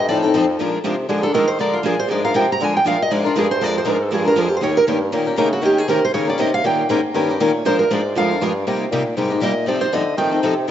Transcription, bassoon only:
0.10 A2
0.34 F2
0.59 A#2
0.84 C3
1.09 D3
1.34 D#3
1.60 D3
1.85 A#2
2.10 G#2
2.35 C3
2.61 D3
2.75 D3
2.86 A#2
3.11 G#2
3.25 G#2
3.37 G2
3.62 F2
3.87 G#2
4.13 G2
4.37 F2
4.62 D#2
4.77 D#2
4.88 G2
5.13 A#2
5.38 C#3
5.63 D#3
5.88 C3
6.13 C#3
6.39 C3
6.64 A#2
6.89 G#2
7.03 G#2
7.14 G2
7.40 A#2
7.65 A#2
7.91 G#2
8.16 F2
8.41 G2
8.67 C3
8.91 A#2
9.17 G#2
9.41 A#2
9.67 C3
9.93 D3
10.17 D#3
10.43 C3

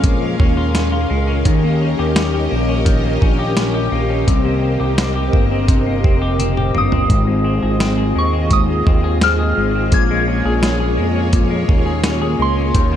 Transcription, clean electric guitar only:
Already playing: G#3 C#4 F4
0.04 A#2
0.21 G#3
0.40 C#4
0.57 F4
0.75 C#4
0.92 F4
1.10 G#3
1.27 C#4
1.45 D#3
1.63 A#3
1.81 C#4
1.99 G4
2.16 C#4
2.34 G4
2.51 A#3
2.69 C#4
2.85 D#3
3.03 A#3
3.21 C#4
3.39 G4
3.57 C#4
3.74 G4
3.92 A#3
4.10 C#4
4.27 C3
4.45 A#3
4.62 C4
4.80 G4
4.98 C4
5.16 G4
5.33 A#3
5.52 C4
5.69 C3
5.86 A#3
6.04 C4
6.22 G4
6.39 C4
6.57 G4
6.75 A#3
6.92 C4
7.09 G#2
7.27 G#3
7.44 C4
7.63 G#4
7.80 C4
7.98 G#4
8.16 G#3
8.33 C4
8.51 G#2
8.69 G#3
8.87 C4
9.04 G#4
9.22 C4
9.39 G#4
9.57 G#3
9.75 C4
9.93 A#2
10.11 G#3
10.28 C#4
10.46 G#4
10.63 C#4
10.80 G#4
10.97 G#3
11.15 C#4
11.33 A#2
11.50 G#3
11.68 C#4
11.86 G#4
12.04 C#4
12.22 G#4
12.39 G#3
12.57 C#4
12.75 D#3
12.92 A#3

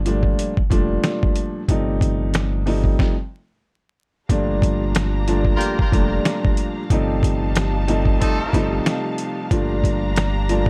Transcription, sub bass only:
Already playing: G1
0.58 F1
0.71 F1
1.69 G1
4.30 G1
5.79 F1
5.93 F1
6.91 G1
8.40 G1
8.54 G1
9.51 G1

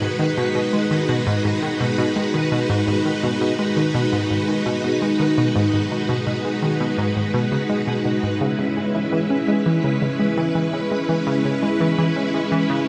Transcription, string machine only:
Already playing: G#3 D#4 F#4 B4
8.41 G#3 C#4 E4 B4

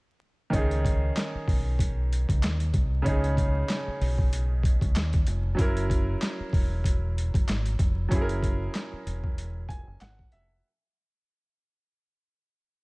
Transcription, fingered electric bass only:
0.53 C#2
1.35 muted fingered electric bass stroke
1.48 B1
2.29 C#2
2.43 D#2
2.74 C2
3.06 C#2
3.87 muted fingered electric bass stroke
4.01 B1
4.81 C#2
4.96 D#2
5.27 F1
5.59 F#1
6.40 muted fingered electric bass stroke
6.53 E1
7.34 F#1
7.48 G#1
7.79 F1
8.11 F#1
8.93 muted fingered electric bass stroke
9.06 E1
9.87 F#1
10.01 G#1
10.32 F1

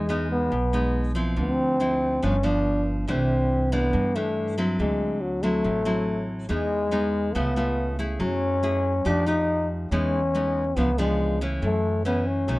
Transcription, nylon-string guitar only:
Already playing: E3
0.09 G#3 B3 D#4
0.52 B2
0.73 G#3 B3 D#4
1.15 F3 C4 E4
1.36 D3
1.80 F3 C4 E4
2.22 G2 F3 B3 D4
2.43 F3 B3 D4
3.08 C3 E3 A3 D4
3.72 E3 A3 D4
3.93 G2
4.16 E3 A3 D4
4.58 F#3 C4 E4
4.80 D3
5.43 F#3 C4 E4
5.64 A2
5.85 F#3 C4 E4
6.49 E3 G#3 B3 D#4
6.91 G#3 B3 D#4
7.35 C#3 A3 B3 F4
7.56 A3 B3 F4
7.99 A3 E4 G#4
8.20 F#3
8.63 A3 E4 G#4
9.05 F3 A3 D#4 G4
9.26 A3 D#4 G4
9.92 E3 G#3 B3 D#4
10.35 G#3 B3 D#4
10.77 C#3 F3 B3 D4
10.98 F3 B3 D4
11.41 E3 A3 C#4
11.63 F#2
12.05 E3 A3 C#4
12.48 B2 D#3 A3 C#4

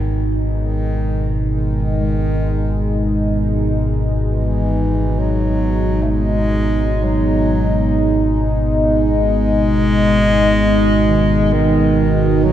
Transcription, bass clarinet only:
Already playing: D#3
0.60 D#3
1.54 D#3
4.28 E3
5.19 F#3
6.03 A3
6.11 G#3
7.04 F#3
8.82 G#3
11.53 D#3
12.44 F#3

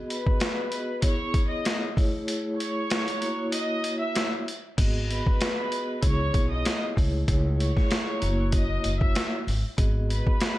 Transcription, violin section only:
0.10 B4 B5
1.03 C#5 C#6
1.51 D#5 D#6
2.59 C#5 C#6
3.54 D#5 D#6
4.00 E5 E6
5.10 B4 B5
6.06 C#5 C#6
6.52 D#5 D#6
7.59 C#5 C#6
8.54 D#5 D#6
9.01 E5 E6
10.10 B4 B5

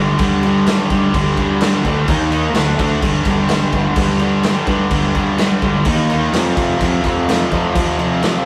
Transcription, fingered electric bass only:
Already playing: G1
0.19 G2
0.90 G2
1.14 G1
1.37 G2
1.84 D2
2.08 D#2
2.54 D2
2.79 D2
3.03 G1
3.26 G1
3.73 G1
3.97 G2
4.67 G2
4.91 G1
5.15 G2
5.62 G1
5.86 D#2
6.33 F2
6.57 F2
6.80 F2
7.04 F2
7.51 F2
7.75 F3

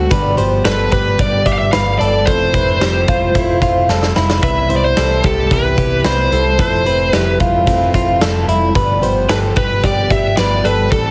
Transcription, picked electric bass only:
0.11 G1
0.38 G1
0.65 G1
0.93 G1
1.19 G1
1.46 G1
1.74 G1
2.00 G1
2.27 F1
2.54 F1
2.81 F1
3.08 F1
3.35 F1
3.62 F1
3.89 F1
4.17 F1
4.43 C2
4.70 C2
4.97 C2
5.24 C2
5.51 C2
5.78 C2
6.04 C2
6.32 C2
6.59 F1
6.86 F1
7.14 F1
7.41 F1
7.67 F1
7.94 F1
8.20 F1
8.47 F1
8.76 G1
9.02 G1
9.29 G1
9.57 G1
9.84 G1
10.10 G1
10.38 G1
10.65 G1
10.92 A1

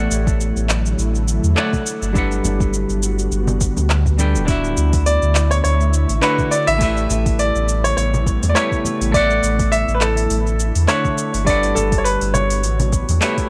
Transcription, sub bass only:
0.11 A1
0.56 A1
0.99 A1
1.44 E2
2.02 G1
2.44 G1
2.90 G1
3.32 G1
3.77 D2
4.35 D1
4.77 D2
5.22 D2
5.65 D2
6.10 A1
6.68 A1
7.10 A1
7.56 A1
7.97 A1
8.43 E2
9.01 A1
9.43 A1
9.88 A1
10.31 A1
10.76 E2
11.34 G1
11.76 G1
12.22 G1
12.64 A1
13.09 E2

